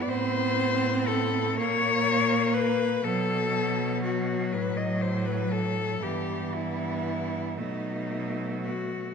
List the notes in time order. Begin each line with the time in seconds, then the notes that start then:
Already playing: B3
0.02 D5
0.08 A2 C4 C5
1.07 A4
1.56 A#2 A#3 C#5
2.54 B4
3.04 B2 F#3 A4
4.03 F#4
4.52 A2 F#3 B4
4.77 D#5
5.01 C5
5.26 B4
5.51 A4
6.03 G2 E3 B3 G4
6.55 E4
7.57 B2 F#3 A3 D#4
8.63 F#4